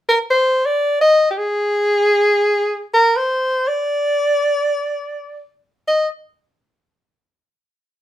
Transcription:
0.09 0.19 A#4 medium
0.31 0.67 C5 medium
0.66 1.01 D5 medium
1.01 1.27 D#5 loud
1.31 1.39 G4 medium
1.38 2.83 G#4 loud
2.94 3.18 A#4 loud
3.17 3.70 C5 medium
3.68 5.50 D5 medium
5.88 6.09 D#5 medium

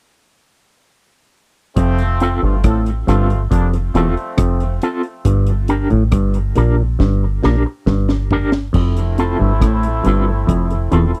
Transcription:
1.76 2.39 F1 loud
1.76 2.03 F2 medium
1.76 2.38 F3 loud
1.76 2.38 A3 loud
1.76 2.38 C4 loud
1.76 kick medium
1.76 closed hi-hat medium
1.98 closed hi-hat medium
2.20 2.39 C4 medium
2.20 2.40 F4 medium
2.20 2.40 A4 medium
2.20 closed hi-hat medium
2.42 2.64 G1 medium
2.42 2.56 G2 medium
2.42 2.60 A3 medium
2.42 2.60 C4 medium
2.42 2.60 F4 medium
2.64 3.04 A1 medium
2.64 2.90 A2 medium
2.64 2.82 C4 medium
2.64 2.82 F4 medium
2.64 2.81 A4 medium
2.64 kick medium
2.64 cross-stick loud
2.64 closed hi-hat medium
2.86 closed hi-hat medium
3.07 3.48 G1 loud
3.07 3.34 G2 medium
3.07 3.43 A3 medium
3.07 3.26 C4 medium
3.07 3.43 C4 medium
3.07 3.43 F4 medium
3.07 3.27 F4 medium
3.07 3.27 A4 medium
3.07 cross-stick medium
3.07 closed hi-hat medium
3.30 closed hi-hat soft
3.51 3.91 F1 medium
3.51 3.77 F2 medium
3.51 3.69 G3 medium
3.51 3.68 A#3 medium
3.51 3.68 D4 medium
3.51 kick loud
3.51 closed hi-hat medium
3.73 muted clean electric guitar stroke soft
3.73 closed hi-hat soft
3.94 4.14 E1 medium
3.94 4.08 E2 medium
3.94 4.78 F3 medium
3.94 4.78 A3 medium
3.94 4.78 C4 medium
3.94 4.13 C4 medium
3.94 4.14 F4 medium
3.94 4.14 A4 medium
3.94 closed hi-hat medium
4.17 closed hi-hat soft
4.38 4.78 F1 medium
4.38 4.64 F2 medium
4.38 kick loud
4.38 cross-stick loud
4.38 closed hi-hat medium
4.60 closed hi-hat soft
4.82 5.01 C4 medium
4.82 5.01 F4 medium
4.82 5.01 A4 loud
4.82 closed hi-hat medium
5.03 closed hi-hat soft
5.25 5.87 G1 loud
5.25 5.51 G2 medium
5.25 kick loud
5.25 closed hi-hat loud
5.47 closed hi-hat medium
5.68 5.87 D4 medium
5.68 5.88 G4 medium
5.68 5.88 A#4 medium
5.68 closed hi-hat medium
5.90 6.11 A1 medium
5.90 6.03 A2 medium
5.90 closed hi-hat soft
6.12 6.52 G1 medium
6.12 6.38 G2 medium
6.12 kick loud
6.12 cross-stick loud
6.12 closed hi-hat medium
6.34 closed hi-hat soft
6.56 6.96 A#1 medium
6.56 6.82 A#2 medium
6.56 6.75 D4 medium
6.56 6.75 G4 medium
6.56 6.75 A#4 medium
6.56 closed hi-hat medium
6.99 7.39 G1 medium
6.99 7.25 G2 medium
6.99 kick loud
6.99 snare medium
7.43 7.64 A#1 medium
7.43 7.56 A#2 medium
7.43 7.62 D4 medium
7.43 7.62 G4 loud
7.43 7.62 A#4 medium
7.43 snare medium
7.66 muted clean electric guitar stroke medium
7.86 8.70 G1 medium
7.86 8.13 G2 medium
7.86 kick loud
7.86 snare medium
8.09 snare medium
8.31 8.49 D4 medium
8.31 8.50 G4 medium
8.31 8.50 A#4 loud
8.31 floor tom loud
8.52 snare medium
8.73 9.36 F1 loud
8.73 8.99 F2 medium
8.73 11.20 A3 medium
8.73 11.20 C4 medium
8.73 11.20 E4 medium
8.73 kick medium
8.73 crash medium
8.97 closed hi-hat medium
9.18 9.36 C4 medium
9.18 9.37 F4 medium
9.18 9.37 A4 medium
9.18 closed hi-hat medium
9.39 9.62 G1 medium
9.39 9.52 G2 medium
9.61 10.01 A1 medium
9.61 9.87 A2 medium
9.61 kick loud
9.61 cross-stick loud
9.61 closed hi-hat medium
9.83 closed hi-hat medium
10.04 10.45 G1 loud
10.04 10.30 G2 medium
10.04 10.23 C4 medium
10.04 10.24 F4 medium
10.04 10.24 A4 medium
10.04 closed hi-hat medium
10.28 muted clean electric guitar stroke soft
10.47 10.88 F1 medium
10.47 10.74 F2 medium
10.47 kick loud
10.47 closed hi-hat medium
10.71 muted clean electric guitar stroke soft
10.71 closed hi-hat soft
10.92 11.12 E1 medium
10.92 11.05 E2 medium
10.92 11.10 C4 medium
10.92 11.11 F4 medium
10.92 11.11 A4 medium
10.92 closed hi-hat medium
11.15 closed hi-hat soft

